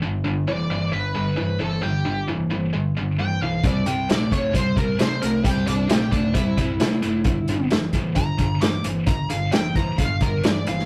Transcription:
<<
  \new Staff \with { instrumentName = "Lead electric guitar" } { \time 4/4 \key c \major \tempo 4 = 133 r4 d''4 b'4. a'8 | g'4 r2 g''8 f''8 | d''8 g''8 d''8 cis''8 c''8 bes'8 c''8 bes'8 | g'8 d'8 g'8 d'8 e'2~ |
e'4 r4 bes''4 d'''8 r8 | bes''8 f''8 g''8 bes''8 f''8 bes'8 d''8 f''8 | }
  \new Staff \with { instrumentName = "Distorted electric guitar" } { \clef bass \time 4/4 \key c \major <g, d>8 <g, d>8 <g, e>8 <g, e>8 <g, d>8 <g, d>8 <g, e>8 <g, e>8 | <g, d>8 <g, d>8 <g, e>8 <g, e>8 <g, d>8 <g, d>8 <g, e>8 <g, e>8 | <c g>8 <c g>8 <c a>8 <c a>8 <c g>8 <c g>8 <c a>8 <c a>8 | <c g>8 <c g>8 <c a>8 <c a>8 <c g>8 <c g>8 <c a>8 <c a>8 |
<g, d>8 <g, d>8 <g, e>8 <g, e>8 <g, d>8 <g, d>8 <g, e>8 <g, e>8 | <g, d>8 <g, d>8 <g, e>8 <g, e>8 <g, d>8 <g, d>8 <g, e>8 <g, e>8 | }
  \new Staff \with { instrumentName = "Picked electric bass" } { \clef bass \time 4/4 \key c \major g,,8 g,,8 f,,8 g,,8 g,,8 g,,8 g,8 g,,8 | g,,8 g,,8 f,,8 g,,8 g,,8 g,,8 g,8 b,,8 | c,8 c,8 bes,,8 c,8 c,8 c,8 c8 c,8 | r8 c,8 bes,,8 c,8 c,8 c,8 c8 fis,,8 |
g,,8 g,,8 f,,8 g,,8 g,,8 g,,8 g,8 g,,8 | g,,8 g,,8 r8 g,,8 g,,8 g,,8 g,8 g,,8 | }
  \new DrumStaff \with { instrumentName = "Drums" } \drummode { \time 4/4 r4 r4 r4 r4 | r4 r4 r4 r4 | <hh bd>8 hh8 <hh sn>8 <hh bd>8 <hh bd>8 <hh bd>8 <hh sn>8 hh8 | <hh bd>8 hh8 <hh sn>8 <hh bd>8 <hh bd>8 <hh bd>8 <hh sn>8 hh8 |
<hh bd>8 hh8 <hh sn>8 <hh bd>8 <hh bd>8 <hh bd>8 <hh sn>8 hh8 | <hh bd>8 hh8 <hh sn>8 <hh bd>8 <hh bd>8 <hh bd>8 <hh sn>8 hh16 sn16 | }
>>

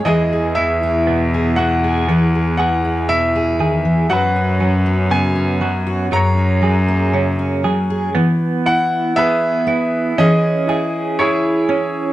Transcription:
<<
  \new Staff \with { instrumentName = "Grand piano" } { \time 4/4 \key e \lydian \tempo 4 = 59 << { dis''8 e''4 fis''4 fis''8 e''4 | fis''4 gis''4 ais''4. r8 | r8 fis''8 e''4 dis''4 cis''4 | } \\ { gis'2 r2 | b'2 cis''2 | r4 <gis' b'>4 gis'4 <e' gis'>4 | } >> }
  \new Staff \with { instrumentName = "Clean electric guitar" } { \time 4/4 \key e \lydian <e gis'>8 e'8 b8 fis'16 gis'16 b8 gis'8 e'8 gis'8 | <fis fis'>8 cis'8 b8 fis'8 fis8 gis'8 cis'8 gis'8 | b8 e'8 b8 e'8 cis'8 gis'8 e'8 cis'8 | }
  \new Staff \with { instrumentName = "Steel-string acoustic guitar" } { \time 4/4 \key e \lydian << { <b e' gis'>16 gis'8 e'8 gis'8 gis'16 gis'16 gis'8 e'8 gis'8. | fis'16 cis'8 b8 cis'8 fis'16 gis'16 cis'8 ais8 cis'8 gis'16 | r8 e'8 gis'4 <cis' e' gis'>8 e'8 gis'4 | } \\ { e8 b8 b,8 b8 e8 b8 b,8 dis16 e16 | fis,8 fis8 cis8 fis8 fis,8 fis8 cis8 fis8 | e4. b8 e4. cis'8 | } >> }
  \new Staff \with { instrumentName = "Cello" } { \clef bass \time 4/4 \key e \lydian e,1 | fis,2 fis,2 | r1 | }
>>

